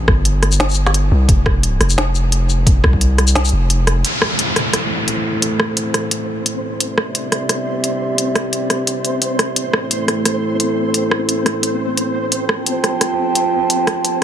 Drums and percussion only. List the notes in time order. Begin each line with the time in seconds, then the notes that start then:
0.08 kick, cross-stick
0.25 closed hi-hat
0.43 cross-stick, closed hi-hat
0.52 shaker
0.60 snare, closed hi-hat
0.69 shaker
0.71 shaker
0.74 shaker
0.87 snare
0.94 closed hi-hat
1.29 kick, closed hi-hat
1.46 kick, cross-stick
1.63 closed hi-hat
1.81 cross-stick, closed hi-hat
1.90 shaker
1.98 cross-stick, snare, closed hi-hat
2.15 shaker
2.32 closed hi-hat
2.50 shaker
2.67 kick, closed hi-hat
2.84 kick, cross-stick
2.93 kick
3.01 closed hi-hat
3.18 cross-stick, closed hi-hat
3.28 shaker
3.35 snare, closed hi-hat
3.45 closed hi-hat, shaker
3.70 closed hi-hat
3.87 cross-stick, closed hi-hat
4.05 closed hi-hat
4.22 cross-stick
4.39 closed hi-hat
4.56 cross-stick, closed hi-hat
4.73 cross-stick, closed hi-hat
5.08 closed hi-hat
5.42 closed hi-hat
5.60 cross-stick
5.77 closed hi-hat
5.94 cross-stick, closed hi-hat
6.11 closed hi-hat
6.46 closed hi-hat
6.80 closed hi-hat
6.98 cross-stick
7.15 closed hi-hat
7.32 cross-stick, closed hi-hat
7.49 cross-stick, closed hi-hat
7.84 closed hi-hat
8.18 closed hi-hat
8.36 cross-stick, closed hi-hat
8.53 closed hi-hat
8.70 cross-stick, closed hi-hat
8.87 closed hi-hat
9.05 closed hi-hat
9.22 closed hi-hat
9.39 cross-stick, closed hi-hat
9.56 closed hi-hat
9.74 cross-stick
9.91 closed hi-hat
10.08 cross-stick, closed hi-hat
10.25 cross-stick, closed hi-hat
10.60 closed hi-hat
10.94 closed hi-hat
11.11 cross-stick
11.29 closed hi-hat
11.46 cross-stick, closed hi-hat
11.63 closed hi-hat
11.97 closed hi-hat
12.32 closed hi-hat
12.49 cross-stick
12.66 closed hi-hat
12.84 cross-stick, closed hi-hat
13.01 cross-stick, closed hi-hat
13.35 closed hi-hat
13.70 closed hi-hat
13.87 cross-stick, closed hi-hat
14.05 closed hi-hat